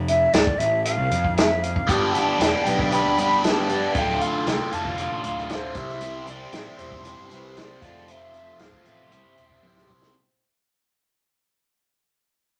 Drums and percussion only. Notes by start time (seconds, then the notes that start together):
0.08 closed hi-hat
0.33 snare, closed hi-hat
0.47 kick
0.60 closed hi-hat
0.85 closed hi-hat
1.11 closed hi-hat
1.24 kick
1.37 snare, closed hi-hat
1.63 closed hi-hat
1.76 kick
1.89 kick, closed hi-hat
2.15 closed hi-hat
2.41 snare, closed hi-hat
2.66 closed hi-hat
2.79 kick
2.92 closed hi-hat
3.18 closed hi-hat
3.44 snare, closed hi-hat
3.69 closed hi-hat
3.95 kick, closed hi-hat
4.21 closed hi-hat
4.47 snare, closed hi-hat
4.72 closed hi-hat
4.85 kick
4.98 closed hi-hat
5.24 closed hi-hat
5.38 snare
5.49 snare, closed hi-hat
5.75 kick, closed hi-hat
5.89 snare
6.01 closed hi-hat
6.27 closed hi-hat
6.53 snare, closed hi-hat
6.79 closed hi-hat
6.92 kick
7.05 closed hi-hat
7.31 closed hi-hat
7.57 snare, closed hi-hat
7.82 kick, snare, closed hi-hat
7.96 snare
8.08 closed hi-hat
8.34 closed hi-hat
8.59 snare, closed hi-hat
8.72 kick
8.85 closed hi-hat
9.12 closed hi-hat
9.37 closed hi-hat
9.50 kick
9.63 high tom
9.77 snare
9.89 mid tom
10.02 snare